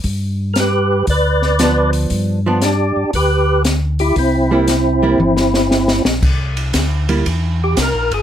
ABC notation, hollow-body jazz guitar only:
X:1
M:4/4
L:1/8
Q:"Swing" 1/4=116
K:C
V:1 name="Hollow-body jazz guitar"
z6 [F,B,D]2- | [F,B,D] [F,B,D] z6 | z [G,_B,E] z [G,B,E] z4 | z3 [G,_B,E] z4 |]